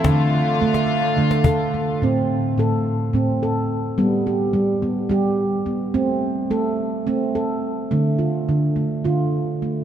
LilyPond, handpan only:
<<
  \new Staff \with { instrumentName = "Handpan" } { \time 7/8 \key a \minor \tempo 4 = 107 a'8 r4. a8 a'8 a8 | c'4 a'4 c'8 a'4 | b8 g'4 b8 g'4 b8 | c'4 a'4 c'8 a'4 |
a8 f'4 a8 f'4 a8 | }
  \new Staff \with { instrumentName = "Handpan" } { \clef bass \time 7/8 \key a \minor d4 a4 d4. | a,4 a,4 a,8 r4 | g4 g4 g8 r4 | a4 a4 a8 r4 |
d4 d4 d8 r4 | }
>>